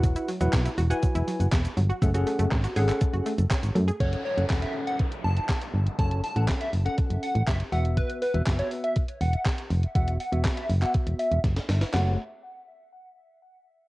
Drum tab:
HH |xxoxxxoxxxoxxxox|xxoxxxoxxxoxxxox|xx-xxx-xxx-xxx-x|xxoxxxoxxxoxxxox|
SH |xxxxxxxxxxxxxxxx|xxxxxxxxxxxxxxxx|----------------|----------------|
CP |----x-------x---|----x--x----x---|----x-------x---|----x-------x---|
SD |----o-------o---|----o-------o---|----o-------o---|----o-------o---|
BD |o---o---o---o---|o---o---o---o---|o---o---o---o---|o---o---o---o---|

HH |xxoxxxoxxxoxxxox|xxoxxxoxxxoxxxox|----------------|
SH |----------------|----------------|----------------|
CP |----x-------x---|----x--x--------|x---------------|
SD |----o-------o---|----o-------oooo|o---------------|
BD |o---o---o---o---|o---o---o---o---|----------------|